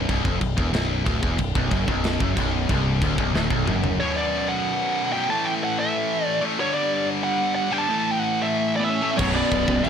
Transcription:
0.09 0.24 C1 loud
0.09 0.25 C2 loud
0.09 kick loud
0.09 china medium
0.24 0.40 F1 loud
0.24 0.41 F2 loud
0.24 kick loud
0.41 0.57 B0 medium
0.41 0.54 B1 medium
0.41 kick medium
0.41 china medium
0.57 0.72 E1 loud
0.57 0.73 E2 loud
0.57 kick loud
0.73 1.04 B0 loud
0.73 1.05 B1 loud
0.73 snare loud
0.73 china medium
1.05 1.22 D1 loud
1.05 1.22 D2 loud
1.05 kick loud
1.05 china medium
1.22 1.38 E1 medium
1.22 1.38 E2 loud
1.22 kick loud
1.38 1.54 B0 medium
1.38 1.52 B1 medium
1.38 kick medium
1.38 china medium
1.55 1.71 B0 loud
1.55 1.71 B1 loud
1.55 kick loud
1.71 1.87 F#1 loud
1.71 1.88 F#2 loud
1.71 kick loud
1.71 china medium
1.88 2.18 B0 loud
1.88 2.20 B1 loud
1.88 kick loud
2.04 snare loud
2.04 china medium
2.20 2.36 F#1 loud
2.20 2.37 F#2 loud
2.20 kick loud
2.37 2.67 B0 medium
2.37 2.69 B1 loud
2.37 kick loud
2.37 china medium
2.69 3.00 C1 medium
2.69 3.02 C2 loud
2.69 kick loud
2.69 china medium
3.02 3.17 D1 loud
3.02 3.18 D2 loud
3.02 kick loud
3.02 china medium
3.18 3.33 B0 loud
3.18 3.34 B1 loud
3.18 kick loud
3.34 3.50 D1 loud
3.34 3.50 D2 loud
3.34 snare medium
3.50 3.66 B0 loud
3.50 3.66 B1 loud
3.50 kick loud
3.67 3.98 F#1 medium
3.67 3.99 F#2 loud
3.67 mid tom medium
3.84 floor tom medium
4.00 5.12 B1 medium
4.00 5.12 F#2 loud
4.00 5.11 B2 loud
4.00 4.15 C#5 medium
4.17 4.50 D5 medium
4.48 5.12 F#5 loud
5.12 5.28 B1 medium
5.12 5.29 F#2 medium
5.12 5.28 B2 medium
5.12 5.30 G5 medium
5.29 6.42 A2 medium
5.29 6.41 E3 medium
5.29 6.40 A3 loud
5.29 5.46 A5 loud
5.45 5.50 G5 loud
5.64 5.79 F#5 medium
5.80 6.25 E5 loud
6.25 6.40 D5 loud
6.41 6.58 A2 medium
6.41 6.58 E3 medium
6.41 6.57 A3 medium
6.58 7.71 G2 medium
6.58 7.71 D3 loud
6.58 7.70 G3 loud
6.58 6.74 C#5 loud
6.74 7.05 D5 loud
7.24 7.54 F#5 loud
7.55 7.72 F#5 loud
7.71 7.88 G2 medium
7.71 7.88 D3 medium
7.71 7.87 G3 medium
7.71 7.80 G5 loud
7.78 8.09 A5 loud
7.89 9.01 A2 loud
7.89 9.02 E3 medium
7.89 9.00 A3 loud
8.11 8.19 G5 loud
8.19 8.45 F#5 loud
8.42 8.76 E5 loud
8.76 8.84 D5 medium
8.80 8.90 B3 medium
8.80 9.09 E5 medium
8.90 9.12 C#4 medium
9.02 9.19 A2 medium
9.02 9.18 E3 medium
9.02 9.17 A3 medium
9.18 9.41 B0 loud
9.18 9.89 B1 medium
9.18 9.89 F#2 loud
9.18 9.89 B2 loud
9.18 9.34 F#3 medium
9.18 9.33 C#5 loud
9.18 kick loud
9.18 crash loud
9.18 china medium
9.34 9.50 B1 medium
9.34 9.50 F#2 medium
9.34 9.50 B2 loud
9.34 9.80 B3 medium
9.34 9.85 D5 medium
9.51 9.63 B0 medium
9.51 9.66 B1 medium
9.51 9.66 F#2 medium
9.51 9.65 B2 loud
9.51 kick medium
9.51 china medium
9.66 9.79 B0 medium
9.66 9.81 B1 medium
9.66 9.81 F#2 medium
9.66 9.82 B2 medium
9.66 kick medium
9.82 9.89 B1 loud
9.82 9.89 F#2 loud
9.82 9.89 B2 loud
9.82 9.89 D4 medium
9.82 9.89 F#5 loud
9.82 china medium
9.86 9.89 B0 loud

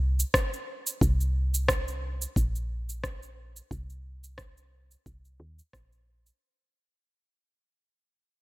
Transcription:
0.00 0.24 C2 medium
0.20 cabasa medium
0.34 kick loud
0.34 cross-stick loud
0.34 cabasa medium
0.53 cabasa soft
0.87 cabasa medium
1.01 2.26 C2 loud
1.01 kick loud
1.01 cabasa medium
1.21 cabasa soft
1.54 cabasa medium
1.68 kick loud
1.68 cross-stick loud
1.68 cabasa medium
1.88 cabasa soft
2.22 cabasa medium
2.36 3.61 A#1 medium
2.36 kick loud
2.36 cabasa medium
2.55 cabasa soft
2.89 cabasa medium
3.04 kick loud
3.04 cross-stick medium
3.04 cabasa medium
3.23 cabasa soft
3.56 cabasa medium
3.71 4.96 C2 medium
3.71 kick medium
3.71 cabasa soft
3.90 cabasa soft
4.24 cabasa medium
4.38 kick medium
4.38 cross-stick medium
4.38 cabasa medium
4.57 cabasa soft
4.91 cabasa medium
5.06 5.39 C2 medium
5.06 kick medium
5.06 cabasa medium
5.25 cabasa soft
5.40 5.61 D#2 loud
5.59 cabasa medium
5.73 6.31 A#1 medium
5.73 kick loud
5.73 cross-stick medium
5.73 cabasa medium
5.92 cabasa soft
6.26 cabasa medium

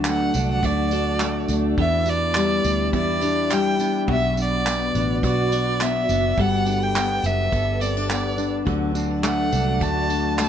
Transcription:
0.00 0.30 D2 medium
0.00 1.82 D3 medium
0.00 1.78 F#3 medium
0.00 0.34 D4 medium
0.00 0.35 D4 medium
0.00 0.63 F#4 medium
0.00 1.76 F#4 medium
0.00 0.92 A4 medium
0.00 1.76 D5 medium
0.00 1.73 A5 medium
0.00 6.32 D6 medium
0.05 1.20 A3 medium
0.05 0.63 A3 medium
0.05 0.48 F#5 medium
0.05 clap loud
0.05 tambourine medium
0.34 0.61 C2 medium
0.34 1.21 D4 medium
0.34 0.92 D4 medium
0.34 tambourine medium
0.52 0.67 F#5 medium
0.63 1.45 D2 loud
0.63 1.49 A3 medium
0.63 1.78 F#4 medium
0.63 1.51 D5 medium
0.63 kick medium
0.63 tambourine medium
0.91 1.49 D4 medium
0.91 1.78 A4 medium
0.91 tambourine medium
1.20 1.85 A3 medium
1.20 2.07 D4 medium
1.20 clap loud
1.20 tambourine medium
1.48 1.75 D2 medium
1.48 1.78 A3 medium
1.48 2.06 D4 soft
1.48 tambourine medium
1.78 2.60 E2 medium
1.78 4.08 E2 medium
1.78 2.36 B3 medium
1.78 2.91 E4 medium
1.78 4.06 G4 medium
1.78 3.21 G4 medium
1.78 4.06 E5 medium
1.78 2.10 E5 loud
1.78 6.34 B5 medium
1.78 kick loud
2.06 2.62 D4 medium
2.06 tambourine medium
2.07 2.64 D4 medium
2.07 2.94 D5 loud
2.07 tambourine soft
2.35 3.51 G3 medium
2.35 2.93 B3 medium
2.35 clap loud
2.35 tambourine medium
2.63 2.93 D2 medium
2.63 3.22 D4 medium
2.63 3.51 D4 medium
2.63 tambourine medium
2.92 4.04 E2 loud
2.92 3.80 B3 medium
2.92 4.08 E4 medium
2.92 3.54 D5 medium
2.92 kick medium
2.92 tambourine medium
3.21 3.78 D4 medium
3.21 4.08 G4 medium
3.21 tambourine medium
3.50 4.15 G3 medium
3.50 4.37 D4 medium
3.50 3.96 G5 loud
3.50 clap loud
3.50 tambourine medium
3.79 4.66 B3 medium
3.79 4.36 D4 medium
3.79 tambourine medium
3.79 tambourine soft
4.07 4.90 B1 medium
4.07 6.37 B2 medium
4.07 6.38 F#3 medium
4.07 5.23 F#4 medium
4.07 6.35 F#4 medium
4.07 5.51 F#4 medium
4.07 6.35 D5 medium
4.07 kick loud
4.12 4.37 E5 loud
4.36 4.94 D4 medium
4.36 tambourine medium
4.41 5.21 D5 loud
4.65 5.81 B3 medium
4.65 5.23 B3 medium
4.65 clap loud
4.65 tambourine medium
4.95 5.24 A1 medium
4.95 5.52 D4 medium
4.95 5.81 D4 medium
4.95 tambourine medium
5.23 6.05 B1 loud
5.23 6.10 B3 medium
5.23 6.38 F#4 medium
5.23 5.84 D5 medium
5.23 kick medium
5.23 tambourine medium
5.52 6.09 D4 medium
5.52 6.38 F#4 medium
5.52 tambourine medium
5.52 tambourine soft
5.81 6.96 B3 medium
5.81 6.67 D4 medium
5.81 6.42 E5 medium
5.81 clap loud
5.81 tambourine medium
6.09 6.35 F#1 medium
6.09 6.38 B3 medium
6.09 6.66 D4 soft
6.09 tambourine medium
6.09 tambourine soft
6.38 7.20 G1 medium
6.38 8.65 G3 medium
6.38 6.94 B3 medium
6.38 8.65 G4 medium
6.38 7.52 A4 medium
6.38 7.80 A4 medium
6.38 8.65 B4 medium
6.38 6.85 F#5 loud
6.38 10.49 A5 medium
6.38 10.49 D6 medium
6.38 kick loud
6.38 tambourine soft
6.66 7.24 D4 medium
6.66 7.22 D4 medium
6.66 tambourine medium
6.66 tambourine soft
6.83 7.27 G5 medium
6.95 7.51 B3 medium
6.95 8.08 B3 medium
6.95 clap loud
6.95 tambourine medium
7.23 7.50 F#1 medium
7.23 8.09 D4 medium
7.23 7.80 D4 medium
7.23 7.83 E5 loud
7.23 tambourine medium
7.23 tambourine soft
7.52 8.63 G1 loud
7.52 8.37 B3 medium
7.52 8.66 A4 medium
7.52 kick loud
7.52 tambourine medium
7.80 7.97 C4 medium
7.80 8.67 A4 medium
7.80 8.10 D5 medium
7.80 tambourine medium
7.80 tambourine soft
7.97 8.36 D4 soft
8.10 8.73 B3 medium
8.10 8.96 D4 medium
8.10 8.51 D5 medium
8.10 clap loud
8.10 tambourine medium
8.37 8.73 B3 medium
8.37 8.94 D4 medium
8.37 tambourine medium
8.37 tambourine soft
8.64 9.49 D2 loud
8.64 10.49 D3 medium
8.64 10.49 F#3 medium
8.64 10.49 F#4 medium
8.64 9.80 F#4 medium
8.64 10.08 A4 medium
8.64 10.49 D5 medium
8.64 kick loud
8.64 tambourine soft
8.95 9.11 C4 medium
8.95 9.52 D4 medium
8.95 tambourine medium
9.11 9.51 D4 medium
9.23 10.38 A3 medium
9.23 9.79 A3 medium
9.23 9.84 F#5 medium
9.23 clap loud
9.23 tambourine medium
9.52 9.79 C2 loud
9.52 10.38 D4 medium
9.52 10.10 D4 medium
9.52 tambourine medium
9.52 tambourine soft
9.81 10.49 D2 loud
9.81 10.49 A3 medium
9.81 10.49 F#4 medium
9.81 10.39 A5 loud
9.81 kick medium
9.81 tambourine medium
10.10 10.49 D4 medium
10.10 10.49 A4 medium
10.10 tambourine medium
10.38 10.49 A3 medium
10.38 10.49 D4 medium
10.38 10.49 A5 loud
10.38 clap loud
10.38 tambourine medium

